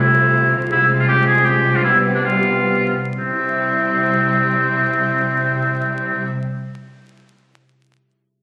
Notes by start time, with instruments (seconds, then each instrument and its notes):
Already playing: double bass section C2, harp C3 C4 F4 A4 C5, cello section C3, viola section A3, french horn section A3 F4, violin section C4 F5
0.00 oboe E4
0.55 harp C3
0.59 harp C4
0.64 harp F4
0.68 french horn section G#3, oboe E4, harp G#4
0.72 double bass section C2, cello section C3, viola section G#3, violin section C4, french horn section F4
1.00 oboe F4
1.08 oboe G4
1.27 oboe G#4
1.45 oboe G4
1.67 harp C3
1.72 harp B3, oboe F4
1.76 harp D4
1.81 viola section G3, oboe E4, harp G4
1.85 violin section B3 D5, french horn section B3 G4
2.15 oboe D4
2.25 french horn section B3 G4, oboe F4
3.17 double bass section C2, harp C3, cello section C3, viola section G3, oboe C4, violin section C4 E5, french horn section C4 E4
3.25 harp C4
3.32 harp E4
3.39 harp G4
3.46 harp E5